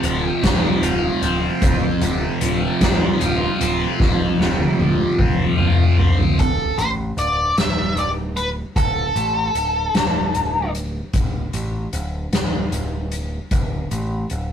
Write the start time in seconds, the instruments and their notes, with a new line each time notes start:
Already playing: distorted electric guitar F2 C3 C4 F4, tonewheel organ F3 A3 C4 F4, lead electric guitar A5
0.03 picked electric bass D1, distorted electric guitar F3, closed hi-hat
0.29 lead electric guitar G5
0.43 picked electric bass D1, distorted electric guitar C4, kick, snare, closed hi-hat
0.82 picked electric bass D1, distorted electric guitar F4, closed hi-hat
1.22 picked electric bass D1, distorted electric guitar C4, closed hi-hat
1.62 picked electric bass D1, distorted electric guitar F2, kick, closed hi-hat
2.01 picked electric bass D1, distorted electric guitar C3, closed hi-hat
2.41 picked electric bass D1, distorted electric guitar F3, closed hi-hat
2.81 picked electric bass D1, distorted electric guitar C4, kick, snare, closed hi-hat
3.20 picked electric bass D1, distorted electric guitar F4, closed hi-hat
3.60 picked electric bass D1, distorted electric guitar C4, closed hi-hat
4.00 picked electric bass D1, distorted electric guitar F2, kick, snare
4.39 picked electric bass D1, distorted electric guitar C3, snare
4.60 high tom
4.79 picked electric bass D1, distorted electric guitar F3, high tom
5.18 picked electric bass D1, distorted electric guitar C4, kick, mid tom
5.39 mid tom
5.58 picked electric bass D1, distorted electric guitar F4, mid tom
5.98 picked electric bass D1, distorted electric guitar C4, floor tom
6.19 floor tom
6.38 picked electric bass D1, lead electric guitar A4, kick, closed hi-hat
6.78 picked electric bass A1, lead electric guitar C5, closed hi-hat
7.17 picked electric bass D1, lead electric guitar D5, closed hi-hat
7.58 picked electric bass D1, lead electric guitar E5, snare, closed hi-hat
7.96 picked electric bass D1, lead electric guitar D5, closed hi-hat
8.37 lead electric guitar B4, closed hi-hat
8.76 picked electric bass D1, lead electric guitar A4, kick, closed hi-hat
9.16 picked electric bass A1, closed hi-hat
9.55 picked electric bass D1, closed hi-hat
9.94 picked electric bass D1, snare, closed hi-hat
10.35 picked electric bass D1, closed hi-hat
10.75 closed hi-hat
11.13 picked electric bass D1, kick, closed hi-hat
11.53 picked electric bass A1, closed hi-hat
11.93 picked electric bass D1, closed hi-hat
12.33 picked electric bass D1, snare, closed hi-hat
12.72 picked electric bass D1, closed hi-hat
13.12 closed hi-hat
13.51 picked electric bass D1, kick, closed hi-hat
13.91 picked electric bass A1, closed hi-hat
14.30 picked electric bass D1, closed hi-hat